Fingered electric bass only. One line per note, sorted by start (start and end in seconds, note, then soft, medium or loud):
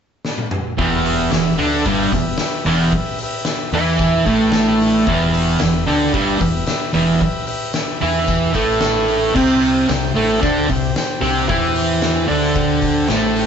0.79 1.29 E1 medium
1.32 1.57 E1 medium
1.59 1.83 D2 medium
1.85 2.10 G1 medium
2.12 2.37 E1 medium
2.66 2.91 E1 medium
3.72 4.22 E2 medium
4.27 5.03 A1 loud
5.07 5.56 E1 medium
5.61 5.86 E1 medium
5.89 6.13 D2 loud
6.14 6.39 G1 loud
6.41 6.66 E1 medium
6.95 7.19 E1 medium
8.03 8.52 E2 medium
8.55 9.31 A1 medium
9.36 9.85 C2 loud
9.90 10.14 C2 medium
10.16 10.41 A1 medium
10.43 10.68 D2 loud
10.70 10.94 C2 medium
11.22 11.47 C2 medium
11.50 12.25 E2 loud
12.30 13.06 D2 medium
13.09 13.46 A1 loud